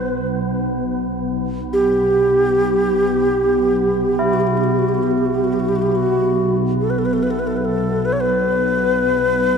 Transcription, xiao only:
0.00 0.27 B4 medium
1.73 4.35 G4 medium
4.33 4.42 F#4 medium
4.40 4.49 G4 soft
4.47 4.59 F#4 soft
4.57 4.65 G4 soft
4.64 4.73 F#4 soft
4.71 4.80 G4 soft
4.79 4.90 F#4 medium
4.89 4.96 G4 medium
4.95 5.05 F#4 medium
5.03 5.13 G4 soft
5.11 5.19 F#4 soft
5.18 5.27 G4 soft
5.25 5.36 F#4 medium
5.34 5.46 G4 soft
5.44 5.55 F#4 medium
5.53 5.61 G4 soft
5.60 5.70 F#4 medium
5.69 5.77 G4 medium
5.76 5.83 F#4 medium
5.82 5.92 G4 medium
5.92 6.56 F#4 medium
5.92 5.96 G4 medium
6.80 6.92 A4 medium
6.90 7.00 B4 medium
6.99 7.07 A4 soft
7.06 7.15 B4 medium
7.13 7.24 A4 soft
7.23 7.32 B4 medium
7.31 7.41 A4 medium
7.39 7.49 B4 medium
7.47 7.58 A4 medium
7.57 7.66 B4 soft
7.65 8.07 A4 medium
8.05 8.14 B4 medium
8.13 8.22 C#5 medium
8.20 9.58 B4 medium

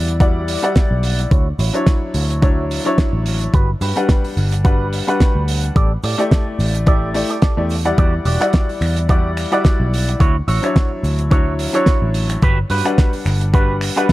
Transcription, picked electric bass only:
0.00 0.56 E2 medium
0.91 1.25 B1 medium
1.31 1.51 D2 medium
1.59 1.70 A1 medium
2.15 2.78 D2 medium
3.13 3.47 A1 medium
3.54 3.74 G1 medium
3.81 3.92 G2 loud
4.37 5.00 G1 medium
5.35 5.70 D2 medium
5.76 5.96 A1 medium
6.04 6.14 A2 medium
6.59 7.22 A1 medium
7.57 7.92 E2 medium
7.98 8.18 E2 medium
8.25 8.36 E1 medium
8.81 9.44 E2 medium
9.80 10.14 B1 medium
10.20 10.40 D2 medium
10.48 10.58 A1 medium
11.03 11.67 D2 medium
12.02 12.36 A1 medium
12.42 12.63 G1 medium
12.70 12.81 G2 loud
13.26 13.89 G1 medium

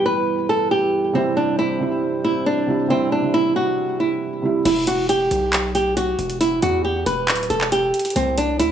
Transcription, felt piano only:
1.13 1.54 C3 medium
1.13 1.55 G3 medium
1.13 1.56 E4 loud
1.79 2.33 C3 medium
1.79 2.34 G3 medium
1.79 2.35 E4 medium
2.67 2.81 C3 medium
2.67 2.82 G3 medium
2.67 2.82 E4 medium
2.88 3.09 C3 medium
2.88 3.10 G3 medium
2.88 3.11 E4 loud
3.21 3.76 C3 medium
3.21 3.76 G3 medium
3.21 3.77 E4 medium
4.42 4.56 C3 medium
4.42 4.57 G3 medium
4.42 4.58 E4 medium

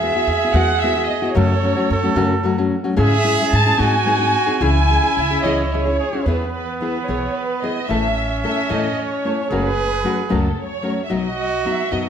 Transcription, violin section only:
0.00 0.54 E5 medium
0.54 0.83 F#5 loud
0.80 1.08 E5 loud
1.07 1.35 D#5 medium
1.34 2.40 C#5 medium
3.01 3.51 E5 loud
3.55 3.80 A5 loud
3.80 4.60 G#5 loud
4.61 5.40 G#5 loud
5.19 5.43 E5 loud
5.44 5.71 C#5 medium
5.44 5.62 D#5 medium
5.64 5.72 D#5 medium
5.72 6.26 C#5 medium
6.26 6.52 B4 medium
6.53 6.79 B4 medium
6.80 7.06 B4 medium
7.07 7.36 C#5 medium
7.35 7.62 B4 medium
7.62 7.89 D#5 medium
7.88 8.43 E5 medium
8.45 8.69 E5 medium
8.72 8.99 D#5 medium
9.00 9.51 C#5 medium
9.54 10.33 B4 medium
10.32 10.60 A4 medium
10.62 11.03 C#5 medium
11.05 11.12 E5 medium
11.12 11.66 D#5 medium
11.66 11.92 E5 medium
11.91 12.04 D#5 medium

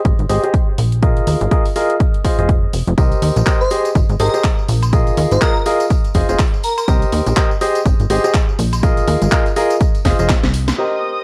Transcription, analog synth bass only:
0.05 0.14 G#1 medium
0.19 0.26 G#1 medium
0.29 0.39 G#1 medium
0.78 1.21 A#1 medium
1.27 1.36 D#2 medium
1.41 1.48 G#1 loud
2.39 2.68 F1 medium
2.73 2.83 F1 medium
2.87 2.94 F1 medium
2.98 3.15 C2 loud
3.22 3.31 D#2 medium
3.36 3.43 A#1 medium
3.95 4.05 G#1 loud
4.09 4.16 G#1 medium
4.20 4.29 G#1 medium
4.69 5.12 A#1 medium
5.17 5.27 D#2 medium
5.31 5.38 G#1 loud
6.15 6.24 F1 loud
6.29 6.36 F1 loud
6.88 7.05 C2 loud
7.12 7.22 D#2 medium
7.26 7.33 A#1 medium
7.86 7.95 G#1 medium
8.00 8.06 G#1 medium
8.10 8.19 G#1 loud
8.59 9.02 A#1 medium
9.08 9.17 D#2 medium
9.22 9.28 G#1 loud
10.05 10.14 F1 loud
10.19 10.34 F1 medium
10.44 10.73 C2 medium

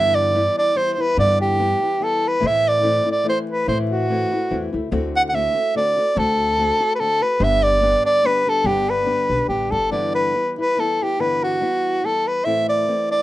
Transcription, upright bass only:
0.00 0.46 G2 medium
1.17 1.72 G2 medium
2.43 2.97 A2 medium
3.68 4.22 A2 medium
4.51 4.72 E2 medium
4.74 4.91 D2 medium
4.92 5.47 D2 medium
6.17 6.70 D2 medium
7.40 7.94 G1 medium
8.64 9.07 G1 medium
9.29 9.47 B1 medium
9.49 9.70 A1 soft
9.72 9.90 G1 medium

